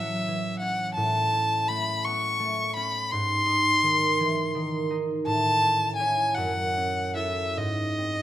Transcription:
Already playing: A2 E3 F#3 C#4 E5
0.28 E3
0.59 C#4 F#5
0.94 A2 A5
1.33 C#4
1.68 A3 B5
2.04 B3 C#6
2.40 A3
2.75 C#4 B5
3.11 G#2 C6
3.46 D#4
3.83 D#3
4.20 E3
4.55 D#3
4.91 D#4
5.26 A2 A5
5.63 C#4
5.95 G#5
6.00 E4 C#5
6.34 F#2 F#5
6.77 C#4
7.15 E4 A4 E5
7.57 G#2 D#5
7.98 C4

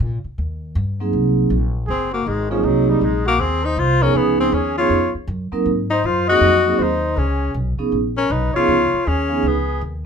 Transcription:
0.00 A#2
0.24 muted upright bass stroke
0.38 D#2
0.75 G2
1.00 F#3 A#3 C4 D#4 G#4
1.13 C2
1.50 A#1
1.87 F#1 C4 G#4
2.12 A#3 F#4
2.26 G#1 G#3 D#4
2.50 F3 F#3 A#3 C4 C#4 D#4 G#4
2.63 C2 F#3 D#4
2.88 G3 D#4
3.01 A#1 G#3 D#4
3.26 A#3 F#4
3.39 D#2 C4 G#4
3.64 D#4 C5
3.76 C2 F4 C5
4.02 F3 B3 C#4 D#4 G#4 A#4
4.15 B3 G#4
4.40 C4 G#4
4.52 D#2 C#4 G#4
4.77 F3 B3 C#4 D#4 F4 G#4 C#5
4.90 F2
5.14 muted upright bass stroke
5.27 F#2
5.52 F#3 A#3 C4 D#4 A#4, muted upright bass stroke
5.66 G#2
5.91 D#4 C5
6.04 F#2 F4 C5
6.28 F#3 A#3 C4 D#4 F#4 G#4 D#5
6.41 F2
6.65 F#3 A#3 C4 D#4 G#4
6.79 D#2 C5
6.83 D#4
7.16 C#2 C#4 G#4
7.54 B1
7.79 F3 B3 C#4 D#4 G#4, muted upright bass stroke
7.92 A#1
8.17 C#4 A#4
8.30 B1 D#4 B4
8.54 F3 B3 C#4 D#4 F4 G#4 C#5
8.68 C#2
8.93 muted upright bass stroke
9.06 D#2 C#4 G#4
9.29 F3 B3 C#4 D#4 G#4
9.43 C#2 G#4
9.48 B3
9.81 D#2

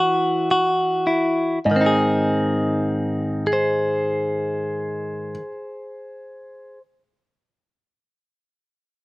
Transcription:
Already playing: E3 E4 F#4 B4 F#5
0.51 F#4
1.07 E4
1.65 G#2 D#5
1.71 D#3
1.76 C4
1.81 D#4
1.86 G#4
3.47 G#4
3.53 C5

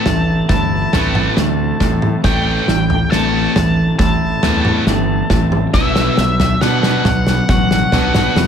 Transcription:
Already playing: A2 C4 A5
0.05 A1 A2 E3 A3, snare, floor tom, mid tom
0.49 G1 A2 E3 E4 A5, kick, snare, floor tom
0.93 A1 A2 E3 A3 C4, snare, floor tom
1.15 mid tom
1.36 D2 A2 E3 A3, snare
1.80 A2 E3 C4, kick, snare, floor tom
2.02 mid tom
2.24 A1 A2 E3 A3 G5, kick, snare, floor tom
2.68 A1 A2 E3, snare
2.90 floor tom
3.11 A1 A2 E3 A3 C4 A5, snare
3.55 A1 A2 E3 A3, snare, floor tom, mid tom
3.99 A1 A2 E3 E4 A5, kick, snare, floor tom
4.43 E2 A2 E3 A3 C4, snare, floor tom
4.65 mid tom
4.86 G1 A2 E3 A3, snare
5.30 A1 A2 E3 C4, kick, snare, floor tom
5.52 mid tom
5.74 B1 B2 F#3 B3 E5, kick, snare, floor tom
5.96 snare
6.17 B1 B2 F#3, snare
6.40 snare, floor tom
6.61 B2 F#3 B3 D4 F#5, snare
6.83 snare
7.05 B1 B2 F#3 B3, snare, floor tom, mid tom
7.27 snare
7.49 A1 B2 F#3 F#4 F#5, kick, snare, floor tom
7.71 snare
7.92 B1 B2 F#3 B3 D4, snare, floor tom
8.15 snare, mid tom
8.35 E2 B2 F#3 B3, snare

